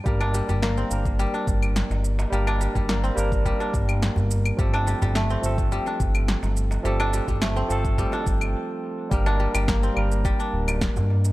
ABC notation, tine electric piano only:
X:1
M:4/4
L:1/8
Q:1/4=106
K:Gm
V:1 name="Tine electric piano"
[G,B,DB]3 [G,B,DB]4- [G,B,DB] | [G,B,DB]3 [G,B,DB]4- [G,B,DB] | [F,A,CA]3 [F,A,CA]4- [F,A,CA] | [F,A,CA]3 [F,A,CA]3 z2 |
[G,B,DB]3 [G,B,DB]4- [G,B,DB] |]